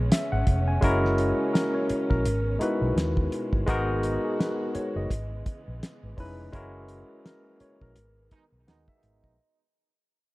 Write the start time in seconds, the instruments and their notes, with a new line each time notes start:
Already playing: string section C#3 G#3 B3 C#4
0.12 tine electric piano E5, snare, closed hi-hat
0.32 fingered electric bass G#1, tine electric piano F#5
0.47 fingered electric bass F1, kick, closed hi-hat
0.68 tine electric piano G#5
0.81 fingered electric bass F#1, string section F#3 A#3, tine electric piano G#3 C#4 E4 F#4 A#4, kick, closed hi-hat
1.05 snare
1.18 closed hi-hat
1.54 tine electric piano A#4, snare, closed hi-hat
1.75 tine electric piano C#5
1.89 muted fingered electric bass stroke, closed hi-hat
2.10 fingered electric bass A#1, tine electric piano A#4, kick
2.25 fingered electric bass G#1, string section B2 G#3 B3, closed hi-hat
2.59 tine electric piano G#3 D#4 E4 F#4 B4, muted fingered electric bass stroke, closed hi-hat
2.82 fingered electric bass B1
2.96 fingered electric bass D#2, snare, closed hi-hat
3.17 kick
3.32 closed hi-hat
3.53 fingered electric bass G1, kick
3.67 fingered electric bass G#1, tine electric piano G#3 B3 D#4 F#4 A#4, string section B3 F#4, kick, closed hi-hat
4.03 closed hi-hat
4.25 tine electric piano G#4
4.39 tine electric piano B4, snare, closed hi-hat
4.75 tine electric piano C#5, muted fingered electric bass stroke, closed hi-hat
4.96 fingered electric bass F#1, tine electric piano D#5
5.10 fingered electric bass G#1, string section C#3 E3 B3, kick, closed hi-hat
5.46 muted fingered electric bass stroke, kick, closed hi-hat
5.68 fingered electric bass A#1
5.83 snare, closed hi-hat
6.03 fingered electric bass G#1
6.17 fingered electric bass F1, tine electric piano G#3 C#4 D#4 E4 B4, kick, open hi-hat
6.52 fingered electric bass F#1, string section F#3 A#3, tine electric piano G#3 C#4 E4 F#4 A#4, kick, closed hi-hat
6.88 closed hi-hat
7.25 tine electric piano A#4, snare, closed hi-hat
7.60 tine electric piano C#5, muted fingered electric bass stroke, closed hi-hat
7.81 fingered electric bass A#1, tine electric piano A#4, kick
7.95 fingered electric bass G#1, string section D#3 G#3 B3, closed hi-hat
8.31 trombone section B2 G#3 D#4, muted fingered electric bass stroke, kick, closed hi-hat
8.52 fingered electric bass B1
8.67 fingered electric bass D#2, trombone section B2 G#3 D#4, tine electric piano F#5, snare, closed hi-hat
8.88 tine electric piano E5, kick
9.03 fingered electric bass G#1, closed hi-hat
9.24 fingered electric bass A#1, tine electric piano D#5, kick